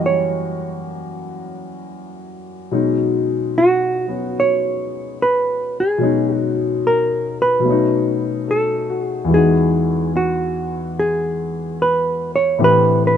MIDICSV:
0, 0, Header, 1, 3, 480
1, 0, Start_track
1, 0, Key_signature, 5, "major"
1, 0, Tempo, 821918
1, 1588, Time_signature, 4, 2, 24, 8
1, 5434, Key_signature, 4, "major"
1, 7694, End_track
2, 0, Start_track
2, 0, Title_t, "Hollow-body jazz guitar"
2, 0, Program_c, 0, 26
2, 35, Note_on_c, 0, 73, 68
2, 1426, Note_off_c, 0, 73, 0
2, 2090, Note_on_c, 0, 66, 73
2, 2568, Note_on_c, 0, 73, 77
2, 2570, Note_off_c, 0, 66, 0
2, 3048, Note_off_c, 0, 73, 0
2, 3051, Note_on_c, 0, 71, 74
2, 3368, Note_off_c, 0, 71, 0
2, 3388, Note_on_c, 0, 68, 59
2, 3703, Note_off_c, 0, 68, 0
2, 3703, Note_on_c, 0, 66, 59
2, 3823, Note_off_c, 0, 66, 0
2, 4011, Note_on_c, 0, 70, 77
2, 4330, Note_off_c, 0, 70, 0
2, 4332, Note_on_c, 0, 71, 76
2, 4968, Note_on_c, 0, 69, 65
2, 5264, Note_off_c, 0, 71, 0
2, 5278, Note_off_c, 0, 69, 0
2, 5278, Note_on_c, 0, 68, 65
2, 5419, Note_off_c, 0, 68, 0
2, 5455, Note_on_c, 0, 68, 73
2, 5934, Note_off_c, 0, 68, 0
2, 5937, Note_on_c, 0, 66, 65
2, 6382, Note_off_c, 0, 66, 0
2, 6421, Note_on_c, 0, 68, 67
2, 6901, Note_off_c, 0, 68, 0
2, 6903, Note_on_c, 0, 71, 73
2, 7213, Note_off_c, 0, 71, 0
2, 7216, Note_on_c, 0, 73, 72
2, 7368, Note_off_c, 0, 73, 0
2, 7384, Note_on_c, 0, 71, 91
2, 7617, Note_off_c, 0, 71, 0
2, 7633, Note_on_c, 0, 71, 66
2, 7681, Note_off_c, 0, 71, 0
2, 7694, End_track
3, 0, Start_track
3, 0, Title_t, "Grand piano"
3, 0, Program_c, 1, 0
3, 0, Control_c, 1, 64, 127
3, 0, Note_on_c, 1, 42, 50
3, 0, Note_on_c, 1, 52, 48
3, 0, Note_on_c, 1, 55, 52
3, 0, Note_on_c, 1, 58, 48
3, 0, Note_on_c, 1, 66, 59
3, 1583, Note_off_c, 1, 42, 0
3, 1585, Note_on_c, 1, 47, 48
3, 1586, Note_on_c, 1, 54, 42
3, 1587, Note_off_c, 1, 52, 0
3, 1590, Note_off_c, 1, 55, 0
3, 1591, Note_on_c, 1, 56, 39
3, 1593, Note_on_c, 1, 61, 42
3, 1593, Note_on_c, 1, 63, 53
3, 1594, Note_off_c, 1, 58, 0
3, 1596, Note_off_c, 1, 66, 0
3, 1596, Control_c, 1, 64, 0
3, 1705, Control_c, 1, 64, 127
3, 2366, Note_off_c, 1, 54, 0
3, 2375, Note_on_c, 1, 54, 38
3, 2385, Note_off_c, 1, 61, 0
3, 2385, Note_on_c, 1, 59, 33
3, 2394, Note_on_c, 1, 61, 42
3, 3484, Note_off_c, 1, 47, 0
3, 3492, Note_off_c, 1, 54, 0
3, 3493, Note_on_c, 1, 47, 52
3, 3498, Note_off_c, 1, 56, 0
3, 3501, Note_on_c, 1, 54, 47
3, 3503, Note_off_c, 1, 59, 0
3, 3504, Note_off_c, 1, 61, 0
3, 3506, Note_off_c, 1, 63, 0
3, 3507, Note_on_c, 1, 56, 47
3, 3512, Note_on_c, 1, 61, 47
3, 3522, Note_on_c, 1, 63, 56
3, 4428, Note_off_c, 1, 47, 0
3, 4437, Note_on_c, 1, 47, 52
3, 4444, Note_off_c, 1, 54, 0
3, 4453, Note_on_c, 1, 54, 44
3, 4467, Note_on_c, 1, 57, 42
3, 4468, Note_off_c, 1, 56, 0
3, 4471, Note_off_c, 1, 61, 0
3, 4475, Control_c, 1, 64, 0
3, 4476, Note_off_c, 1, 63, 0
3, 4483, Note_on_c, 1, 61, 46
3, 4499, Note_on_c, 1, 63, 60
3, 4563, Control_c, 1, 64, 127
3, 4952, Note_on_c, 1, 69, 37
3, 5195, Note_on_c, 1, 66, 44
3, 5332, Note_off_c, 1, 69, 0
3, 5399, Note_on_c, 1, 40, 48
3, 5416, Note_on_c, 1, 52, 46
3, 5419, Note_off_c, 1, 47, 0
3, 5427, Note_off_c, 1, 54, 0
3, 5432, Note_on_c, 1, 56, 43
3, 5434, Note_off_c, 1, 57, 0
3, 5441, Control_c, 1, 64, 0
3, 5442, Note_off_c, 1, 61, 0
3, 5442, Note_off_c, 1, 63, 0
3, 5451, Note_on_c, 1, 63, 40
3, 5458, Note_off_c, 1, 66, 0
3, 5466, Note_on_c, 1, 66, 52
3, 5550, Control_c, 1, 64, 127
3, 7336, Note_off_c, 1, 40, 0
3, 7344, Note_off_c, 1, 52, 0
3, 7350, Note_on_c, 1, 45, 50
3, 7353, Note_off_c, 1, 56, 0
3, 7354, Note_on_c, 1, 52, 48
3, 7354, Note_on_c, 1, 57, 47
3, 7355, Note_on_c, 1, 50, 46
3, 7357, Note_on_c, 1, 60, 47
3, 7360, Control_c, 1, 64, 0
3, 7360, Note_on_c, 1, 67, 55
3, 7362, Note_off_c, 1, 63, 0
3, 7370, Note_off_c, 1, 66, 0
3, 7473, Control_c, 1, 64, 127
3, 7694, Note_off_c, 1, 45, 0
3, 7694, Note_off_c, 1, 50, 0
3, 7694, Note_off_c, 1, 52, 0
3, 7694, Note_off_c, 1, 57, 0
3, 7694, Note_off_c, 1, 60, 0
3, 7694, Note_off_c, 1, 67, 0
3, 7694, End_track
0, 0, End_of_file